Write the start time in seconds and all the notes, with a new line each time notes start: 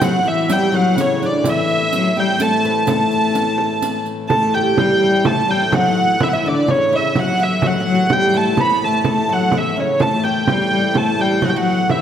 Already playing: A2 E3
0.00 F#3 F#4 F#5, riq, frame drum
0.25 E3 E5, riq, frame drum
0.49 G3 G4 G5, riq
0.72 F#3 F#4 F#5, frame drum
0.96 C#3 C#4, riq, frame drum
1.01 C#5
1.21 D4, riq, frame drum
1.26 D5
1.44 E3 E4, riq, frame drum
1.50 E5
1.68 riq, frame drum
1.93 F#3, riq
2.17 G3 G4 G5
2.39 A3 A4 A5, riq, frame drum
2.64 B4, riq, frame drum
2.87 A3 A4 A5, riq, frame drum
3.11 riq, frame drum
3.35 riq
3.58 frame drum
3.82 riq
4.06 riq
4.28 A2 E3 A3 A4 A5, frame drum
4.54 G4 G5
4.77 G3 G4 G5, frame drum
4.99 G3
5.24 A3 A4 A5, frame drum
5.48 G3 G5, frame drum
5.70 F#3 F#4, frame drum
5.75 F#5
6.19 E3 E4 E5, frame drum
6.29 E3 F#5
6.33 E4 E5
6.43 D3 D4
6.48 D5
6.68 C#3 C#4 C#5, frame drum
6.92 E4 E5, frame drum
7.14 F#3 F#4, frame drum
7.19 F#5
7.40 E4 E5
7.62 F#3 F#4, frame drum
7.67 F#5
7.80 F#4
7.87 F#3
7.95 F#4
8.10 G3 G4 G5, frame drum
8.34 A3 A4 A5, frame drum
8.57 B3 B4 B5, frame drum
8.84 A3 A5
9.04 A3 A4, frame drum
9.09 A5
9.29 F#3 F#4 F#5
9.51 E4, frame drum
9.56 E3 E5
9.77 C#3 C#4 C#5
10.00 A2 E3 A3 A4 A5, frame drum
10.24 G4 G5
10.47 G3 G4 G5, frame drum
10.72 G3
10.91 A4 B4
10.95 A3 A5, frame drum
11.19 G3 G4 G5, frame drum
11.42 F#3 F#4 F#5, frame drum
11.49 G5
11.56 F#3 F#4 F#5
11.89 E3 E4 E5, frame drum